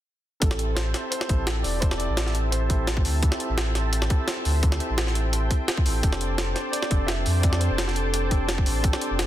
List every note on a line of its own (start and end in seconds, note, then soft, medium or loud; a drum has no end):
0.40 0.93 A1 loud
0.40 1.27 C4 loud
0.40 1.27 E4 medium
0.40 1.28 G4 medium
0.40 0.77 A4 medium
0.40 1.28 A4 loud
0.40 9.27 C5 medium
0.40 5.99 E5 medium
0.40 9.27 G5 medium
0.40 5.99 A5 medium
0.40 kick loud
0.40 closed hi-hat loud
0.51 snare medium
0.59 closed hi-hat medium
0.75 1.09 C5 medium
0.75 snare loud
0.75 closed hi-hat loud
0.94 snare soft
0.94 closed hi-hat medium
1.10 1.44 C5 loud
1.10 closed hi-hat loud
1.21 snare soft
1.28 1.63 A1 medium
1.28 1.80 C4 loud
1.28 1.80 E4 medium
1.28 1.80 G4 medium
1.28 1.81 A4 loud
1.28 kick loud
1.28 closed hi-hat medium
1.47 snare loud
1.47 closed hi-hat loud
1.63 2.08 E1 medium
1.63 1.82 D5 loud
1.63 open hi-hat medium
1.80 2.67 C4 loud
1.80 2.68 E4 medium
1.80 2.68 G4 medium
1.80 2.68 A4 loud
1.80 1.85 C5 loud
1.80 kick loud
1.80 closed hi-hat loud
1.91 snare medium
1.97 2.31 D5 loud
1.97 closed hi-hat medium
2.09 2.69 A1 medium
2.17 snare loud
2.17 closed hi-hat medium
2.26 snare soft
2.35 closed hi-hat medium
2.50 3.00 C5 medium
2.50 closed hi-hat medium
2.69 3.04 A1 medium
2.69 3.20 C4 loud
2.69 3.20 E4 medium
2.69 3.21 G4 medium
2.69 3.21 A4 loud
2.69 kick medium
2.69 closed hi-hat medium
2.87 snare loud
2.87 closed hi-hat medium
2.97 kick loud
3.05 3.30 D2 medium
3.05 open hi-hat medium
3.21 4.08 C4 loud
3.21 4.08 E4 medium
3.21 4.08 G4 medium
3.21 4.09 A4 loud
3.21 kick loud
3.21 closed hi-hat medium
3.32 snare medium
3.40 closed hi-hat medium
3.50 4.09 A1 medium
3.58 snare loud
3.58 closed hi-hat medium
3.75 snare soft
3.75 closed hi-hat medium
3.93 closed hi-hat medium
4.02 snare soft
4.09 4.60 C4 loud
4.09 4.61 E4 medium
4.09 4.61 G4 medium
4.09 4.62 A4 loud
4.09 kick loud
4.09 closed hi-hat medium
4.28 snare loud
4.28 closed hi-hat medium
4.45 4.79 D2 medium
4.45 open hi-hat medium
4.62 5.48 C4 loud
4.62 5.48 E4 medium
4.62 5.49 G4 medium
4.62 5.49 A4 loud
4.62 kick loud
4.62 closed hi-hat medium
4.72 snare medium
4.80 closed hi-hat medium
4.90 5.49 A1 medium
4.98 snare loud
4.98 closed hi-hat medium
5.07 snare soft
5.15 closed hi-hat medium
5.33 closed hi-hat medium
5.51 kick medium
5.51 closed hi-hat medium
5.68 snare loud
5.68 closed hi-hat medium
5.78 kick loud
5.85 6.02 A1 medium
5.85 6.01 C4 medium
5.85 6.01 E4 medium
5.85 6.01 G4 medium
5.85 6.01 A4 medium
5.85 open hi-hat medium
6.02 6.55 F1 loud
6.02 6.89 C4 loud
6.02 6.89 D4 medium
6.02 6.89 G4 medium
6.02 6.90 A4 loud
6.02 9.27 D5 medium
6.02 9.27 A5 medium
6.02 kick loud
6.02 closed hi-hat medium
6.13 snare medium
6.21 closed hi-hat medium
6.37 6.56 A4 medium
6.37 snare loud
6.37 closed hi-hat medium
6.54 6.71 C5 medium
6.54 snare soft
6.54 closed hi-hat medium
6.72 7.09 D5 loud
6.72 closed hi-hat medium
6.83 snare soft
6.90 7.25 F1 loud
6.90 7.41 C4 loud
6.90 7.41 D4 medium
6.90 7.42 G4 medium
6.90 7.42 A4 loud
6.90 kick loud
6.90 closed hi-hat medium
7.07 7.40 E5 loud
7.07 snare loud
7.07 closed hi-hat medium
7.26 7.69 F2 medium
7.26 open hi-hat medium
7.42 8.29 C4 loud
7.42 8.29 D4 medium
7.42 8.29 G4 medium
7.42 8.30 A4 loud
7.42 7.61 D5 loud
7.42 kick loud
7.42 closed hi-hat medium
7.53 snare medium
7.59 7.78 C5 loud
7.59 closed hi-hat medium
7.70 8.30 F1 medium
7.77 7.93 A4 medium
7.77 snare loud
7.77 closed hi-hat medium
7.88 snare soft
7.94 8.61 A4 medium
7.94 closed hi-hat medium
8.14 closed hi-hat medium
8.30 8.65 F1 medium
8.30 8.81 C4 loud
8.30 8.82 D4 medium
8.30 8.82 G4 medium
8.30 8.82 A4 loud
8.30 kick medium
8.30 closed hi-hat medium
8.49 snare loud
8.49 closed hi-hat medium
8.58 kick loud
8.66 8.92 A1 medium
8.66 open hi-hat medium
8.83 9.27 C4 loud
8.83 9.27 D4 medium
8.83 9.27 G4 medium
8.83 9.27 A4 loud
8.83 kick loud
8.83 closed hi-hat loud
8.93 snare medium
9.01 closed hi-hat medium
9.11 9.27 F1 medium
9.19 snare loud
9.19 closed hi-hat loud